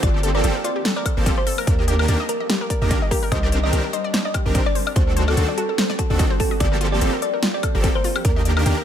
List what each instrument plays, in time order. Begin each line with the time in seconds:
Already playing: ambient pad C4
0.03 808-style bass G1, ambient pad F3 A#3 A4, supersaw synth F3 A#3 C4 G4 A4, synth arpeggio sound F4, synth pluck D5, kick, closed hi-hat
0.14 synth arpeggio sound G4
0.23 synth arpeggio sound A4, closed hi-hat
0.35 synth arpeggio sound A#4, synth pluck D5
0.44 808-style bass G1, supersaw synth F3 A#3 C4 G4 A4, synth arpeggio sound A4, closed hi-hat
0.55 synth arpeggio sound A#4
0.64 synth arpeggio sound F4, synth pluck D5, closed hi-hat
0.76 synth arpeggio sound G4
0.85 synth arpeggio sound A4, snare, closed hi-hat
0.96 synth arpeggio sound A#4, synth pluck D5
1.06 synth arpeggio sound A4, kick, closed hi-hat, high woodblock
1.17 808-style bass G1, supersaw synth F3 A#3 C4 G4 A4, synth arpeggio sound A#4
1.26 synth arpeggio sound F4, kick, closed hi-hat
1.38 synth arpeggio sound G4, synth pluck C5
1.47 synth arpeggio sound A4, open hi-hat
1.58 synth arpeggio sound A#4, high woodblock
1.67 808-style bass D#2, supersaw synth D#3 A#3 D4 G4 A#4, ambient pad G3 A#3 D4 G4, synth pluck A#4, synth arpeggio sound D5, kick, closed hi-hat
1.79 synth arpeggio sound D#5
1.88 synth arpeggio sound G4, closed hi-hat
1.99 synth arpeggio sound A#4, synth pluck A#4, high woodblock
2.08 808-style bass D#2, supersaw synth D#3 A#3 D4 G4 A#4, synth arpeggio sound D5, closed hi-hat
2.20 synth arpeggio sound D#5
2.29 synth pluck A#4, synth arpeggio sound D5, closed hi-hat
2.40 synth arpeggio sound D#5
2.50 synth arpeggio sound G4, snare, closed hi-hat
2.61 synth arpeggio sound A#4
2.70 synth pluck A#4, synth arpeggio sound D5, kick, closed hi-hat
2.82 808-style bass D#2, supersaw synth D#3 A#3 D4 G4 A#4, synth arpeggio sound D#5
2.91 synth arpeggio sound D5, kick, closed hi-hat
3.02 synth arpeggio sound D#5
3.11 synth arpeggio sound G4, synth pluck A#4, kick, open hi-hat
3.23 synth arpeggio sound A#4
3.32 808-style bass C2, supersaw synth D#3 C4 D4 G4 A#4, ambient pad C4 A#4, synth arpeggio sound C5, synth pluck D#5, kick, closed hi-hat
3.43 synth arpeggio sound D5
3.52 synth arpeggio sound C5, closed hi-hat
3.63 synth arpeggio sound D5, synth pluck D#5
3.73 808-style bass C2, supersaw synth D#3 C4 D4 G4 A#4, synth arpeggio sound G4, closed hi-hat
3.84 synth arpeggio sound A#4
3.93 synth arpeggio sound C5, synth pluck D#5, closed hi-hat
4.04 synth arpeggio sound D5
4.14 synth arpeggio sound C5, snare, closed hi-hat
4.25 synth arpeggio sound D5, synth pluck D#5
4.34 synth arpeggio sound G4, kick, closed hi-hat, high woodblock
4.46 808-style bass C2, supersaw synth D#3 C4 D4 G4 A#4, synth arpeggio sound A#4
4.55 synth arpeggio sound C5, kick, closed hi-hat
4.66 synth pluck D5, synth arpeggio sound D5
4.75 synth arpeggio sound C5, open hi-hat
4.87 synth arpeggio sound D5, high woodblock
4.96 808-style bass D2, supersaw synth D#3 C4 D4 F#4 A4, synth arpeggio sound F#4, ambient pad F#4, synth pluck C5, kick, closed hi-hat
5.07 synth arpeggio sound A4
5.16 synth arpeggio sound C5, closed hi-hat
5.28 synth pluck A4, synth arpeggio sound D5, high woodblock
5.37 808-style bass D2, supersaw synth D#3 C4 D4 F#4 A4, synth arpeggio sound C5, closed hi-hat
5.48 synth arpeggio sound D5
5.58 synth arpeggio sound F#4, synth pluck A4, closed hi-hat
5.69 synth arpeggio sound A4
5.78 synth arpeggio sound C5, snare, closed hi-hat
5.90 synth arpeggio sound D5, snare
5.99 synth arpeggio sound F#4, synth pluck A4, kick, closed hi-hat
6.10 808-style bass D2, supersaw synth D#3 C4 D4 F#4 A4, synth arpeggio sound D5
6.19 synth arpeggio sound D#5, kick, closed hi-hat
6.30 synth arpeggio sound C5
6.40 synth pluck A4, synth arpeggio sound A5, kick, open hi-hat
6.51 synth arpeggio sound D#5
6.60 808-style bass G1, ambient pad F3 A#3 A4, supersaw synth F3 A#3 C4 G4 A4, synth arpeggio sound A4, synth pluck D5, kick, closed hi-hat
6.72 synth arpeggio sound A#4
6.81 synth arpeggio sound F4, closed hi-hat
6.92 synth arpeggio sound G4, synth pluck D5
7.01 808-style bass G1, supersaw synth F3 A#3 C4 G4 A4, synth arpeggio sound A4, closed hi-hat
7.13 synth arpeggio sound A#4
7.22 synth arpeggio sound A4, synth pluck D5, closed hi-hat
7.34 synth arpeggio sound A#4
7.43 synth arpeggio sound F4, snare, closed hi-hat
7.54 synth arpeggio sound G4, synth pluck D5
7.63 synth arpeggio sound A4, kick, closed hi-hat, high woodblock
7.75 808-style bass G1, supersaw synth F3 A#3 C4 G4 A4, synth arpeggio sound A#4
7.84 synth arpeggio sound A4, kick, closed hi-hat
7.95 synth arpeggio sound A#4, synth pluck C5
8.04 synth arpeggio sound F4, open hi-hat
8.16 synth arpeggio sound G4, high woodblock
8.25 808-style bass D#2, supersaw synth D#3 A#3 D4 G4 A#4, ambient pad G3 D4 G4, synth pluck A#4, synth arpeggio sound D5, kick, closed hi-hat
8.36 synth arpeggio sound D#5
8.45 synth arpeggio sound D5, closed hi-hat
8.57 synth pluck A#4, synth arpeggio sound D#5, high woodblock
8.66 808-style bass D#2, supersaw synth D#3 A#3 D4 G4 A#4, synth arpeggio sound G4, closed hi-hat
8.77 synth arpeggio sound A#4